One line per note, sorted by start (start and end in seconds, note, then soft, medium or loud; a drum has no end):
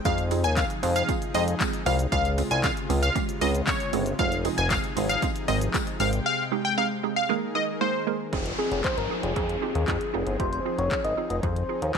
0.00 2.08 C3 medium
0.05 0.46 F2 loud
0.05 2.10 F3 medium
0.05 0.24 G#3 loud
0.05 0.24 C4 medium
0.05 0.24 D#4 medium
0.05 0.24 F4 medium
0.05 0.24 G#4 loud
0.05 0.23 F5 loud
0.05 kick loud
0.05 closed hi-hat medium
0.05 tambourine soft
0.05 shaker medium
0.18 closed hi-hat medium
0.18 shaker medium
0.31 0.50 G#3 medium
0.31 0.50 C4 medium
0.31 0.50 D#4 medium
0.31 0.50 F4 medium
0.31 0.50 G#4 medium
0.31 open hi-hat medium
0.31 tambourine medium
0.31 shaker soft
0.44 0.64 D#2 loud
0.44 0.53 G#5 medium
0.44 closed hi-hat soft
0.44 shaker medium
0.57 0.75 G#3 medium
0.57 0.75 C4 medium
0.57 0.75 D#4 medium
0.57 0.76 F4 medium
0.57 0.76 G#4 medium
0.57 0.66 F5 medium
0.57 kick loud
0.57 clap loud
0.57 closed hi-hat medium
0.57 tambourine medium
0.57 shaker medium
0.70 closed hi-hat medium
0.70 shaker medium
0.83 1.03 F2 loud
0.83 1.01 G#3 medium
0.83 1.01 C4 medium
0.83 1.01 D#4 medium
0.83 1.02 F4 medium
0.83 1.02 G#4 medium
0.83 open hi-hat medium
0.83 tambourine soft
0.83 shaker medium
0.96 1.14 F5 medium
0.96 closed hi-hat medium
0.96 shaker medium
1.08 1.27 G#3 loud
1.08 1.27 C4 medium
1.08 1.27 D#4 medium
1.08 1.27 F4 medium
1.08 1.27 G#4 loud
1.08 kick loud
1.08 closed hi-hat medium
1.08 tambourine soft
1.08 shaker medium
1.22 closed hi-hat medium
1.22 shaker medium
1.34 1.55 F2 medium
1.34 1.53 G#3 medium
1.34 1.53 C4 medium
1.34 1.53 D#4 medium
1.34 1.53 F4 medium
1.34 1.53 G#4 medium
1.34 1.44 D#5 medium
1.34 open hi-hat medium
1.34 tambourine medium
1.34 shaker medium
1.48 closed hi-hat medium
1.48 shaker medium
1.60 1.79 G#3 medium
1.60 1.79 C4 medium
1.60 1.79 D#4 medium
1.60 1.79 F4 medium
1.60 1.79 G#4 loud
1.60 kick loud
1.60 clap loud
1.60 closed hi-hat medium
1.60 tambourine medium
1.60 shaker medium
1.73 closed hi-hat medium
1.73 shaker medium
1.86 2.07 C2 medium
1.86 2.05 G#3 medium
1.86 2.05 C4 medium
1.86 2.05 D#4 medium
1.86 2.05 F4 medium
1.86 2.05 A#4 medium
1.86 1.95 F5 medium
1.86 open hi-hat medium
1.86 shaker medium
1.99 closed hi-hat medium
1.99 shaker medium
2.12 2.42 C#2 loud
2.12 7.25 C3 medium
2.12 4.17 C#3 medium
2.12 2.31 G#3 loud
2.12 4.17 G#3 medium
2.12 2.31 C4 medium
2.12 2.31 C#4 medium
2.12 4.17 F4 medium
2.12 2.31 F4 medium
2.12 2.31 G#4 loud
2.12 2.30 F5 loud
2.12 kick loud
2.12 closed hi-hat medium
2.12 shaker medium
2.25 closed hi-hat medium
2.25 shaker medium
2.38 2.56 G#3 medium
2.38 2.56 C4 medium
2.38 2.57 C#4 medium
2.38 2.57 F4 medium
2.38 2.57 G#4 medium
2.38 open hi-hat medium
2.38 tambourine medium
2.38 shaker soft
2.51 2.71 C2 medium
2.51 2.60 G#5 medium
2.51 closed hi-hat soft
2.51 shaker medium
2.64 2.82 G#3 medium
2.64 2.82 C4 medium
2.64 2.82 C#4 medium
2.64 2.82 F4 medium
2.64 2.83 G#4 medium
2.64 2.73 F5 medium
2.64 kick loud
2.64 clap loud
2.64 closed hi-hat medium
2.64 tambourine medium
2.64 shaker medium
2.77 closed hi-hat medium
2.77 shaker medium
2.89 3.10 C#2 loud
2.89 3.08 G#3 medium
2.89 3.08 C4 medium
2.89 3.08 C#4 medium
2.89 3.08 F4 medium
2.89 3.08 G#4 medium
2.89 open hi-hat medium
2.89 tambourine soft
2.89 shaker medium
3.03 3.21 F5 medium
3.03 closed hi-hat medium
3.03 shaker medium
3.15 3.34 G#3 loud
3.15 3.34 C4 medium
3.15 3.34 C#4 medium
3.15 3.34 F4 medium
3.15 3.34 G4 loud
3.15 kick loud
3.15 closed hi-hat medium
3.15 tambourine soft
3.15 shaker medium
3.29 closed hi-hat medium
3.29 shaker medium
3.41 3.62 C#2 loud
3.41 3.60 G#3 medium
3.41 3.60 C4 medium
3.41 3.60 C#4 medium
3.41 3.60 F4 medium
3.41 3.60 G#4 medium
3.41 3.50 D#5 medium
3.41 open hi-hat medium
3.41 tambourine medium
3.41 shaker medium
3.55 closed hi-hat medium
3.55 shaker medium
3.67 3.86 G#3 medium
3.67 3.86 C4 medium
3.67 3.86 C#4 medium
3.67 3.86 F4 medium
3.67 3.86 G#4 medium
3.67 4.04 C#5 medium
3.67 kick loud
3.67 clap loud
3.67 closed hi-hat medium
3.67 tambourine medium
3.67 shaker medium
3.80 closed hi-hat medium
3.80 shaker medium
3.93 4.13 G1 loud
3.93 4.12 G#3 medium
3.93 4.12 C4 medium
3.93 4.12 C#4 medium
3.93 4.12 F4 medium
3.93 4.12 G#4 medium
3.93 open hi-hat medium
3.93 shaker medium
4.06 closed hi-hat medium
4.06 shaker medium
4.19 4.49 F1 loud
4.19 5.98 F3 medium
4.19 4.37 G#3 medium
4.19 4.38 C4 medium
4.19 5.98 D#4 medium
4.19 4.38 D#4 medium
4.19 4.38 F4 medium
4.19 5.98 G#4 loud
4.19 4.38 G#4 loud
4.19 4.37 F5 loud
4.19 kick loud
4.19 closed hi-hat medium
4.19 shaker medium
4.32 closed hi-hat medium
4.32 shaker medium
4.45 4.63 G#3 medium
4.45 4.63 C4 medium
4.45 4.63 D#4 medium
4.45 4.63 F4 medium
4.45 4.64 G#4 medium
4.45 open hi-hat medium
4.45 tambourine medium
4.45 shaker soft
4.58 4.78 F1 medium
4.58 4.67 G#5 medium
4.58 closed hi-hat medium
4.58 shaker medium
4.70 4.89 G#3 medium
4.70 4.89 C4 medium
4.70 4.89 D#4 medium
4.70 4.89 F4 medium
4.70 4.89 G#4 medium
4.70 4.80 F5 medium
4.70 kick loud
4.70 clap loud
4.70 closed hi-hat medium
4.70 tambourine medium
4.70 shaker medium
4.84 closed hi-hat medium
4.84 shaker medium
4.96 5.17 G#1 loud
4.96 5.15 G#3 medium
4.96 5.15 C4 medium
4.96 5.15 D#4 medium
4.96 5.15 F4 medium
4.96 5.15 G#4 medium
4.96 open hi-hat medium
4.96 tambourine soft
4.96 shaker medium
5.09 5.28 F5 medium
5.09 closed hi-hat medium
5.09 shaker medium
5.22 5.41 G#3 loud
5.22 5.41 C4 medium
5.22 5.41 D#4 medium
5.22 5.41 F4 medium
5.22 5.41 G#4 loud
5.22 kick loud
5.22 closed hi-hat medium
5.22 tambourine medium
5.22 shaker medium
5.36 closed hi-hat medium
5.36 shaker medium
5.48 5.69 G#1 loud
5.48 5.67 G#3 medium
5.48 5.67 C4 medium
5.48 5.67 D#4 medium
5.48 5.67 F4 medium
5.48 5.67 G#4 medium
5.48 5.57 D#5 medium
5.48 open hi-hat medium
5.48 tambourine medium
5.48 shaker medium
5.61 closed hi-hat medium
5.61 shaker medium
5.74 5.93 G#3 loud
5.74 5.93 C4 medium
5.74 5.93 D#4 medium
5.74 5.93 F4 medium
5.74 5.93 G#4 loud
5.74 kick loud
5.74 clap loud
5.74 closed hi-hat medium
5.74 tambourine medium
5.74 shaker medium
5.87 closed hi-hat medium
5.87 shaker medium
6.00 6.20 G#1 loud
6.00 6.41 G#3 medium
6.00 7.28 G#3 medium
6.00 6.41 C4 medium
6.00 6.41 D#4 medium
6.00 6.42 G4 medium
6.00 6.42 G#4 medium
6.00 6.09 F5 medium
6.00 7.28 G5 medium
6.00 open hi-hat medium
6.00 shaker medium
6.13 closed hi-hat medium
6.13 shaker medium
6.26 6.44 F5 loud
6.52 6.70 G#3 medium
6.52 6.70 C4 medium
6.52 6.70 D#4 medium
6.52 6.70 G4 medium
6.52 6.71 G#4 medium
6.65 6.74 G5 medium
6.77 6.96 G#3 medium
6.77 6.96 C4 medium
6.77 6.96 D#4 medium
6.77 6.96 G4 medium
6.77 6.96 G#4 medium
6.77 6.87 F5 medium
7.03 7.22 G#3 medium
7.03 7.22 C4 medium
7.03 7.22 D#4 medium
7.03 7.22 G4 medium
7.03 7.22 G#4 medium
7.16 7.34 F5 medium
7.29 8.32 D#3 medium
7.29 7.48 G#3 loud
7.29 7.48 A#3 medium
7.29 8.31 D#4 medium
7.29 7.48 D#4 medium
7.29 8.32 G#4 medium
7.29 7.48 G#4 medium
7.29 8.32 A#4 medium
7.29 7.48 A#4 loud
7.55 7.74 G#3 medium
7.55 7.74 A#3 medium
7.55 7.74 D#4 medium
7.55 7.74 G#4 medium
7.55 7.74 A#4 medium
7.55 7.64 D#5 medium
7.81 8.00 G#3 medium
7.81 8.00 A#3 medium
7.81 8.00 D#4 medium
7.81 8.00 G#4 medium
7.81 8.00 A#4 medium
7.81 8.18 C5 medium
8.07 8.25 G#3 medium
8.07 8.25 A#3 medium
8.07 8.26 D#4 medium
8.07 8.26 G#4 medium
8.07 8.26 A#4 medium
8.33 8.53 F1 loud
8.33 11.98 F3 medium
8.33 8.51 C4 loud
8.33 11.98 C4 medium
8.33 11.98 D#4 medium
8.33 8.51 D#4 loud
8.33 8.51 F4 loud
8.33 11.98 G#4 medium
8.33 8.52 G#4 loud
8.33 kick loud
8.33 closed hi-hat medium
8.33 downlifter medium
8.46 closed hi-hat medium
8.58 8.77 C4 medium
8.58 8.77 D#4 medium
8.58 8.77 F4 medium
8.58 8.86 G#4 medium
8.58 8.77 G#4 medium
8.72 8.82 F1 medium
8.72 closed hi-hat soft
8.84 9.03 C4 medium
8.84 9.03 D#4 medium
8.84 9.03 F4 medium
8.84 9.03 G#4 medium
8.84 8.99 C5 medium
8.84 kick loud
8.84 clap loud
8.84 closed hi-hat medium
8.97 9.08 G#1 medium
8.97 9.23 A#4 medium
8.97 closed hi-hat soft
9.10 9.29 C4 medium
9.10 9.29 D#4 medium
9.10 9.29 F4 medium
9.10 9.29 G#4 medium
9.23 9.33 F1 medium
9.23 10.36 G#4 medium
9.23 closed hi-hat medium
9.36 9.56 F2 loud
9.36 9.55 C4 medium
9.36 9.55 D#4 medium
9.36 9.55 F4 medium
9.36 9.55 G#4 loud
9.36 kick loud
9.36 closed hi-hat medium
9.49 closed hi-hat medium
9.62 9.81 C4 medium
9.62 9.81 D#4 medium
9.62 9.81 F4 medium
9.62 9.81 G4 medium
9.75 9.85 D#2 loud
9.75 closed hi-hat medium
9.88 9.98 F2 loud
9.88 10.06 C4 loud
9.88 10.07 D#4 loud
9.88 10.07 F4 loud
9.88 10.07 G#4 loud
9.88 kick loud
9.88 clap loud
9.88 closed hi-hat medium
10.01 closed hi-hat soft
10.14 10.24 F1 medium
10.14 10.32 C4 medium
10.14 10.32 D#4 medium
10.14 10.32 F4 medium
10.14 10.33 G#4 loud
10.27 10.37 G1 medium
10.27 closed hi-hat soft
10.40 10.60 F1 loud
10.40 10.58 C4 medium
10.40 10.58 D#4 medium
10.40 10.58 F4 medium
10.40 10.58 G4 loud
10.40 10.52 C5 loud
10.40 kick loud
10.40 closed hi-hat medium
10.53 10.77 C5 loud
10.53 closed hi-hat medium
10.65 10.84 C4 medium
10.65 10.84 D#4 medium
10.65 10.84 F4 medium
10.65 10.84 G#4 medium
10.78 10.89 F1 loud
10.78 11.06 C#5 loud
10.78 closed hi-hat soft
10.91 11.10 C4 medium
10.91 11.10 D#4 medium
10.91 11.10 F4 medium
10.91 11.10 G#4 medium
10.91 kick loud
10.91 clap loud
10.91 closed hi-hat medium
11.04 11.14 G#1 medium
11.04 11.30 D#5 loud
11.04 closed hi-hat soft
11.17 11.36 C4 medium
11.17 11.36 D#4 medium
11.17 11.36 F4 medium
11.17 11.36 G#4 medium
11.30 11.40 F1 medium
11.30 11.36 D#5 loud
11.30 closed hi-hat medium
11.43 11.63 F2 loud
11.43 11.62 C4 loud
11.43 11.62 D#4 medium
11.43 11.62 F4 medium
11.43 11.62 G#4 loud
11.43 11.98 C5 loud
11.43 kick loud
11.43 closed hi-hat medium
11.56 closed hi-hat medium
11.69 11.87 C4 medium
11.69 11.88 D#4 medium
11.69 11.88 F4 medium
11.69 11.88 G#4 medium
11.82 11.92 D#2 medium
11.82 closed hi-hat medium
11.95 11.98 C4 loud
11.95 11.98 D#4 medium